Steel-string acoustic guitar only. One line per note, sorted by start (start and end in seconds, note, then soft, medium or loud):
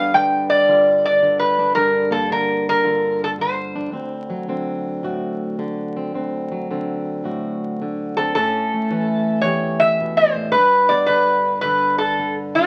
0.00 1.75 G2 medium
0.00 0.13 D3 medium
0.00 1.76 B3 medium
0.00 0.14 D4 medium
0.14 0.68 D3 medium
0.14 1.59 D4 medium
0.69 1.21 D3 medium
0.69 1.76 F4 medium
1.22 2.29 D3 medium
1.59 1.76 D4 medium
1.76 3.92 G2 medium
1.76 2.30 D4 medium
2.11 3.92 A#3 medium
2.30 2.82 D3 medium
2.30 3.75 D4 medium
2.84 3.37 D3 medium
2.84 3.93 F4 medium
3.38 4.48 D3 medium
3.76 3.93 D4 medium
3.92 6.13 D2 medium
3.92 4.49 C4 medium
4.30 6.50 F#3 medium
4.49 5.58 D3 medium
4.49 5.95 C4 medium
5.03 5.59 A2 medium
5.03 6.12 F#4 medium
5.59 6.69 D3 medium
5.97 6.13 C4 medium
6.14 8.35 D2 medium
6.14 6.70 C4 medium
6.52 8.35 F#3 medium
6.71 7.80 D3 medium
6.71 8.16 C4 medium
7.24 7.79 A2 medium
7.24 8.33 F#4 medium
7.82 8.36 D3 medium
8.17 8.33 C4 medium
8.36 9.46 A2 medium
8.36 8.90 C#4 medium
8.74 10.54 A3 medium
8.90 10.53 E3 medium
8.90 10.53 C#4 medium
9.44 10.52 E2 medium
9.44 10.53 G4 medium
10.01 10.35 B2 medium
10.36 10.55 A2 medium
10.55 12.66 G2 medium
10.55 11.10 D4 medium
10.91 12.66 B3 medium
11.10 11.64 D3 medium
11.10 11.65 D4 medium
11.65 12.18 D3 medium
11.65 12.57 D4 medium
12.20 12.66 D3 medium
12.58 12.66 D4 medium